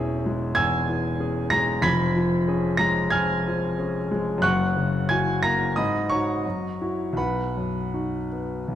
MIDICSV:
0, 0, Header, 1, 2, 480
1, 0, Start_track
1, 0, Tempo, 632244
1, 1397, Time_signature, 4, 2, 24, 8
1, 1878, Tempo, 657174
1, 4278, Tempo, 680272
1, 4758, Tempo, 742574
1, 6252, End_track
2, 0, Start_track
2, 0, Title_t, "Grand piano"
2, 0, Program_c, 0, 0
2, 0, Control_c, 0, 64, 127
2, 0, Note_on_c, 0, 28, 74
2, 0, Note_on_c, 0, 40, 80
2, 0, Note_on_c, 0, 52, 65
2, 0, Note_on_c, 0, 61, 54
2, 0, Note_on_c, 0, 68, 67
2, 0, Note_on_c, 0, 76, 77
2, 0, Note_on_c, 0, 85, 76
2, 0, Note_on_c, 0, 88, 107
2, 104, Note_off_c, 0, 52, 0
2, 169, Note_off_c, 0, 61, 0
2, 172, Note_off_c, 0, 68, 0
2, 198, Note_on_c, 0, 56, 64
2, 396, Note_off_c, 0, 28, 0
2, 396, Note_off_c, 0, 76, 0
2, 398, Note_off_c, 0, 85, 0
2, 402, Note_off_c, 0, 40, 0
2, 414, Note_off_c, 0, 88, 0
2, 416, Note_on_c, 0, 92, 127
2, 426, Note_on_c, 0, 88, 86
2, 429, Note_on_c, 0, 80, 89
2, 434, Note_on_c, 0, 40, 71
2, 573, Note_off_c, 0, 56, 0
2, 676, Note_on_c, 0, 52, 54
2, 910, Note_on_c, 0, 61, 50
2, 913, Note_on_c, 0, 68, 66
2, 1059, Note_off_c, 0, 52, 0
2, 1119, Note_off_c, 0, 88, 0
2, 1120, Note_off_c, 0, 80, 0
2, 1129, Note_off_c, 0, 61, 0
2, 1131, Note_off_c, 0, 68, 0
2, 1140, Note_on_c, 0, 94, 117
2, 1145, Note_off_c, 0, 92, 0
2, 1150, Note_on_c, 0, 82, 94
2, 1155, Note_on_c, 0, 56, 61
2, 1369, Note_off_c, 0, 40, 0
2, 1379, Note_off_c, 0, 82, 0
2, 1383, Note_on_c, 0, 95, 113
2, 1385, Note_on_c, 0, 29, 86
2, 1388, Note_on_c, 0, 92, 92
2, 1390, Note_on_c, 0, 83, 106
2, 1391, Note_off_c, 0, 94, 0
2, 1396, Note_on_c, 0, 41, 84
2, 1398, Note_off_c, 0, 56, 0
2, 1409, Control_c, 0, 64, 0
2, 1532, Control_c, 0, 64, 127
2, 1638, Note_on_c, 0, 53, 68
2, 1878, Note_on_c, 0, 61, 59
2, 1885, Note_on_c, 0, 68, 60
2, 2021, Note_off_c, 0, 53, 0
2, 2083, Note_off_c, 0, 92, 0
2, 2084, Note_off_c, 0, 83, 0
2, 2092, Note_off_c, 0, 61, 0
2, 2096, Note_off_c, 0, 68, 0
2, 2097, Note_on_c, 0, 94, 114
2, 2109, Note_on_c, 0, 82, 89
2, 2110, Note_off_c, 0, 95, 0
2, 2110, Note_on_c, 0, 56, 61
2, 2324, Note_off_c, 0, 29, 0
2, 2329, Note_off_c, 0, 41, 0
2, 2337, Note_off_c, 0, 82, 0
2, 2339, Note_on_c, 0, 92, 115
2, 2348, Note_off_c, 0, 94, 0
2, 2349, Note_on_c, 0, 80, 89
2, 2349, Note_on_c, 0, 89, 94
2, 2355, Note_on_c, 0, 41, 71
2, 2500, Note_off_c, 0, 56, 0
2, 2605, Note_on_c, 0, 53, 57
2, 2806, Note_off_c, 0, 80, 0
2, 2806, Note_off_c, 0, 89, 0
2, 2830, Note_off_c, 0, 92, 0
2, 2839, Note_on_c, 0, 61, 57
2, 2840, Note_on_c, 0, 68, 55
2, 2985, Note_off_c, 0, 53, 0
2, 3053, Note_off_c, 0, 61, 0
2, 3054, Note_off_c, 0, 68, 0
2, 3077, Note_on_c, 0, 56, 66
2, 3271, Note_on_c, 0, 42, 82
2, 3284, Note_off_c, 0, 41, 0
2, 3299, Note_on_c, 0, 90, 121
2, 3306, Note_on_c, 0, 30, 78
2, 3309, Note_on_c, 0, 78, 86
2, 3309, Note_on_c, 0, 85, 85
2, 3315, Note_off_c, 0, 56, 0
2, 3330, Control_c, 0, 64, 0
2, 3451, Control_c, 0, 64, 127
2, 3553, Note_on_c, 0, 49, 61
2, 3763, Note_off_c, 0, 78, 0
2, 3763, Note_off_c, 0, 85, 0
2, 3787, Note_off_c, 0, 90, 0
2, 3788, Note_on_c, 0, 92, 109
2, 3798, Note_on_c, 0, 80, 92
2, 3801, Note_on_c, 0, 64, 56
2, 3802, Note_on_c, 0, 66, 65
2, 3939, Note_off_c, 0, 49, 0
2, 4015, Note_off_c, 0, 64, 0
2, 4016, Note_off_c, 0, 66, 0
2, 4021, Note_off_c, 0, 80, 0
2, 4033, Note_off_c, 0, 92, 0
2, 4034, Note_on_c, 0, 94, 112
2, 4038, Note_on_c, 0, 82, 91
2, 4044, Note_on_c, 0, 58, 60
2, 4227, Note_off_c, 0, 42, 0
2, 4245, Note_off_c, 0, 30, 0
2, 4263, Note_off_c, 0, 82, 0
2, 4278, Note_off_c, 0, 94, 0
2, 4278, Note_on_c, 0, 87, 101
2, 4283, Note_off_c, 0, 58, 0
2, 4286, Note_on_c, 0, 75, 83
2, 4290, Note_on_c, 0, 83, 78
2, 4291, Note_on_c, 0, 44, 73
2, 4293, Control_c, 0, 64, 0
2, 4400, Control_c, 0, 64, 127
2, 4503, Note_off_c, 0, 75, 0
2, 4506, Note_off_c, 0, 83, 0
2, 4515, Note_on_c, 0, 85, 104
2, 4516, Note_off_c, 0, 87, 0
2, 4524, Note_on_c, 0, 73, 67
2, 4525, Note_on_c, 0, 82, 75
2, 4528, Note_on_c, 0, 63, 56
2, 4529, Note_on_c, 0, 66, 57
2, 4741, Note_off_c, 0, 63, 0
2, 4742, Note_off_c, 0, 66, 0
2, 4751, Note_off_c, 0, 44, 0
2, 4772, Note_on_c, 0, 42, 59
2, 4773, Control_c, 0, 64, 0
2, 4893, Control_c, 0, 64, 127
2, 5000, Note_on_c, 0, 64, 58
2, 5002, Note_on_c, 0, 66, 60
2, 5203, Note_on_c, 0, 35, 71
2, 5210, Note_off_c, 0, 73, 0
2, 5211, Note_off_c, 0, 82, 0
2, 5214, Note_off_c, 0, 64, 0
2, 5215, Note_off_c, 0, 66, 0
2, 5225, Note_off_c, 0, 42, 0
2, 5230, Note_on_c, 0, 83, 88
2, 5232, Note_off_c, 0, 85, 0
2, 5235, Note_on_c, 0, 71, 68
2, 5238, Note_on_c, 0, 78, 71
2, 5247, Control_c, 0, 64, 0
2, 5360, Control_c, 0, 64, 127
2, 5488, Note_on_c, 0, 42, 56
2, 5727, Note_on_c, 0, 63, 55
2, 5728, Note_on_c, 0, 66, 50
2, 5867, Note_off_c, 0, 42, 0
2, 5938, Note_off_c, 0, 63, 0
2, 5939, Note_off_c, 0, 66, 0
2, 5977, Note_on_c, 0, 59, 49
2, 6157, Note_off_c, 0, 35, 0
2, 6206, Note_on_c, 0, 35, 63
2, 6252, Note_off_c, 0, 35, 0
2, 6252, Note_off_c, 0, 59, 0
2, 6252, Note_off_c, 0, 71, 0
2, 6252, Note_off_c, 0, 78, 0
2, 6252, Note_off_c, 0, 83, 0
2, 6252, End_track
0, 0, End_of_file